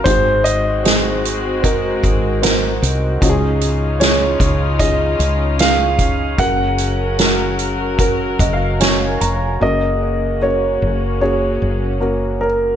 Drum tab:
HH |xxxxxxxx|xxxxxxxx|xxxxxxxx|--------|
SD |--o---o-|--o---o-|--o---o-|--------|
BD |o---oo--|o--oo--o|o---oo--|--------|